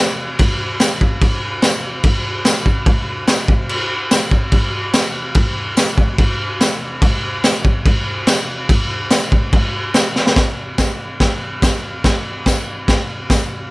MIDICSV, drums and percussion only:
0, 0, Header, 1, 2, 480
1, 0, Start_track
1, 0, Tempo, 413793
1, 464, Time_signature, 4, 2, 24, 8
1, 7665, Tempo, 418410
1, 15809, End_track
2, 0, Start_track
2, 0, Title_t, "Drums"
2, 450, Note_on_c, 9, 49, 69
2, 458, Note_on_c, 9, 36, 113
2, 566, Note_off_c, 9, 49, 0
2, 574, Note_off_c, 9, 36, 0
2, 925, Note_on_c, 9, 49, 67
2, 929, Note_on_c, 9, 38, 113
2, 941, Note_on_c, 9, 54, 103
2, 1041, Note_off_c, 9, 49, 0
2, 1045, Note_off_c, 9, 38, 0
2, 1057, Note_off_c, 9, 54, 0
2, 1173, Note_on_c, 9, 36, 90
2, 1289, Note_off_c, 9, 36, 0
2, 1408, Note_on_c, 9, 49, 62
2, 1410, Note_on_c, 9, 36, 112
2, 1524, Note_off_c, 9, 49, 0
2, 1526, Note_off_c, 9, 36, 0
2, 1881, Note_on_c, 9, 49, 70
2, 1884, Note_on_c, 9, 38, 117
2, 1901, Note_on_c, 9, 54, 104
2, 1997, Note_off_c, 9, 49, 0
2, 2000, Note_off_c, 9, 38, 0
2, 2017, Note_off_c, 9, 54, 0
2, 2360, Note_on_c, 9, 49, 71
2, 2365, Note_on_c, 9, 36, 115
2, 2476, Note_off_c, 9, 49, 0
2, 2481, Note_off_c, 9, 36, 0
2, 2839, Note_on_c, 9, 49, 66
2, 2843, Note_on_c, 9, 38, 121
2, 2857, Note_on_c, 9, 54, 121
2, 2955, Note_off_c, 9, 49, 0
2, 2959, Note_off_c, 9, 38, 0
2, 2973, Note_off_c, 9, 54, 0
2, 3084, Note_on_c, 9, 36, 93
2, 3200, Note_off_c, 9, 36, 0
2, 3318, Note_on_c, 9, 49, 59
2, 3321, Note_on_c, 9, 36, 120
2, 3434, Note_off_c, 9, 49, 0
2, 3437, Note_off_c, 9, 36, 0
2, 3797, Note_on_c, 9, 49, 64
2, 3800, Note_on_c, 9, 38, 120
2, 3807, Note_on_c, 9, 54, 93
2, 3913, Note_off_c, 9, 49, 0
2, 3916, Note_off_c, 9, 38, 0
2, 3923, Note_off_c, 9, 54, 0
2, 4041, Note_on_c, 9, 36, 102
2, 4157, Note_off_c, 9, 36, 0
2, 4283, Note_on_c, 9, 49, 65
2, 4399, Note_off_c, 9, 49, 0
2, 4766, Note_on_c, 9, 49, 65
2, 4769, Note_on_c, 9, 38, 115
2, 4770, Note_on_c, 9, 54, 103
2, 4882, Note_off_c, 9, 49, 0
2, 4885, Note_off_c, 9, 38, 0
2, 4886, Note_off_c, 9, 54, 0
2, 5004, Note_on_c, 9, 36, 97
2, 5120, Note_off_c, 9, 36, 0
2, 5239, Note_on_c, 9, 49, 64
2, 5246, Note_on_c, 9, 36, 101
2, 5355, Note_off_c, 9, 49, 0
2, 5362, Note_off_c, 9, 36, 0
2, 5723, Note_on_c, 9, 49, 71
2, 5727, Note_on_c, 9, 38, 117
2, 5728, Note_on_c, 9, 54, 96
2, 5839, Note_off_c, 9, 49, 0
2, 5843, Note_off_c, 9, 38, 0
2, 5844, Note_off_c, 9, 54, 0
2, 6201, Note_on_c, 9, 49, 74
2, 6209, Note_on_c, 9, 36, 121
2, 6317, Note_off_c, 9, 49, 0
2, 6325, Note_off_c, 9, 36, 0
2, 6691, Note_on_c, 9, 54, 104
2, 6693, Note_on_c, 9, 49, 68
2, 6696, Note_on_c, 9, 38, 105
2, 6807, Note_off_c, 9, 54, 0
2, 6809, Note_off_c, 9, 49, 0
2, 6812, Note_off_c, 9, 38, 0
2, 6933, Note_on_c, 9, 36, 91
2, 7049, Note_off_c, 9, 36, 0
2, 7171, Note_on_c, 9, 49, 68
2, 7174, Note_on_c, 9, 36, 112
2, 7287, Note_off_c, 9, 49, 0
2, 7290, Note_off_c, 9, 36, 0
2, 7662, Note_on_c, 9, 49, 64
2, 7665, Note_on_c, 9, 38, 116
2, 7674, Note_on_c, 9, 54, 84
2, 7776, Note_off_c, 9, 49, 0
2, 7780, Note_off_c, 9, 38, 0
2, 7788, Note_off_c, 9, 54, 0
2, 8137, Note_on_c, 9, 36, 116
2, 8140, Note_on_c, 9, 49, 66
2, 8251, Note_off_c, 9, 36, 0
2, 8255, Note_off_c, 9, 49, 0
2, 8616, Note_on_c, 9, 49, 62
2, 8619, Note_on_c, 9, 38, 107
2, 8628, Note_on_c, 9, 54, 96
2, 8730, Note_off_c, 9, 49, 0
2, 8734, Note_off_c, 9, 38, 0
2, 8743, Note_off_c, 9, 54, 0
2, 8857, Note_on_c, 9, 36, 95
2, 8972, Note_off_c, 9, 36, 0
2, 9094, Note_on_c, 9, 49, 67
2, 9097, Note_on_c, 9, 36, 121
2, 9209, Note_off_c, 9, 49, 0
2, 9211, Note_off_c, 9, 36, 0
2, 9570, Note_on_c, 9, 49, 71
2, 9573, Note_on_c, 9, 38, 122
2, 9584, Note_on_c, 9, 54, 94
2, 9684, Note_off_c, 9, 49, 0
2, 9688, Note_off_c, 9, 38, 0
2, 9699, Note_off_c, 9, 54, 0
2, 10057, Note_on_c, 9, 36, 123
2, 10059, Note_on_c, 9, 49, 71
2, 10172, Note_off_c, 9, 36, 0
2, 10174, Note_off_c, 9, 49, 0
2, 10528, Note_on_c, 9, 49, 68
2, 10531, Note_on_c, 9, 38, 120
2, 10535, Note_on_c, 9, 54, 97
2, 10643, Note_off_c, 9, 49, 0
2, 10646, Note_off_c, 9, 38, 0
2, 10649, Note_off_c, 9, 54, 0
2, 10776, Note_on_c, 9, 36, 92
2, 10891, Note_off_c, 9, 36, 0
2, 11012, Note_on_c, 9, 49, 64
2, 11016, Note_on_c, 9, 36, 107
2, 11127, Note_off_c, 9, 49, 0
2, 11131, Note_off_c, 9, 36, 0
2, 11489, Note_on_c, 9, 49, 68
2, 11492, Note_on_c, 9, 38, 114
2, 11504, Note_on_c, 9, 54, 93
2, 11604, Note_off_c, 9, 49, 0
2, 11607, Note_off_c, 9, 38, 0
2, 11619, Note_off_c, 9, 54, 0
2, 11738, Note_on_c, 9, 38, 61
2, 11852, Note_off_c, 9, 38, 0
2, 11863, Note_on_c, 9, 38, 107
2, 11969, Note_on_c, 9, 49, 56
2, 11972, Note_off_c, 9, 38, 0
2, 11972, Note_on_c, 9, 38, 118
2, 11975, Note_on_c, 9, 36, 120
2, 12083, Note_off_c, 9, 49, 0
2, 12087, Note_off_c, 9, 38, 0
2, 12089, Note_off_c, 9, 36, 0
2, 12451, Note_on_c, 9, 49, 56
2, 12454, Note_on_c, 9, 38, 110
2, 12456, Note_on_c, 9, 36, 108
2, 12460, Note_on_c, 9, 54, 90
2, 12565, Note_off_c, 9, 49, 0
2, 12569, Note_off_c, 9, 38, 0
2, 12571, Note_off_c, 9, 36, 0
2, 12574, Note_off_c, 9, 54, 0
2, 12934, Note_on_c, 9, 49, 60
2, 12936, Note_on_c, 9, 36, 103
2, 12937, Note_on_c, 9, 38, 108
2, 13049, Note_off_c, 9, 49, 0
2, 13051, Note_off_c, 9, 36, 0
2, 13052, Note_off_c, 9, 38, 0
2, 13419, Note_on_c, 9, 36, 123
2, 13423, Note_on_c, 9, 49, 63
2, 13427, Note_on_c, 9, 38, 112
2, 13427, Note_on_c, 9, 54, 85
2, 13534, Note_off_c, 9, 36, 0
2, 13538, Note_off_c, 9, 49, 0
2, 13541, Note_off_c, 9, 38, 0
2, 13542, Note_off_c, 9, 54, 0
2, 13898, Note_on_c, 9, 49, 68
2, 13901, Note_on_c, 9, 36, 111
2, 13901, Note_on_c, 9, 38, 121
2, 14012, Note_off_c, 9, 49, 0
2, 14015, Note_off_c, 9, 36, 0
2, 14016, Note_off_c, 9, 38, 0
2, 14376, Note_on_c, 9, 49, 59
2, 14379, Note_on_c, 9, 38, 106
2, 14381, Note_on_c, 9, 36, 107
2, 14396, Note_on_c, 9, 54, 95
2, 14490, Note_off_c, 9, 49, 0
2, 14494, Note_off_c, 9, 38, 0
2, 14495, Note_off_c, 9, 36, 0
2, 14511, Note_off_c, 9, 54, 0
2, 14862, Note_on_c, 9, 36, 106
2, 14863, Note_on_c, 9, 49, 60
2, 14867, Note_on_c, 9, 38, 104
2, 14977, Note_off_c, 9, 36, 0
2, 14978, Note_off_c, 9, 49, 0
2, 14981, Note_off_c, 9, 38, 0
2, 15341, Note_on_c, 9, 49, 59
2, 15342, Note_on_c, 9, 36, 115
2, 15344, Note_on_c, 9, 38, 106
2, 15355, Note_on_c, 9, 54, 78
2, 15455, Note_off_c, 9, 49, 0
2, 15456, Note_off_c, 9, 36, 0
2, 15459, Note_off_c, 9, 38, 0
2, 15469, Note_off_c, 9, 54, 0
2, 15809, End_track
0, 0, End_of_file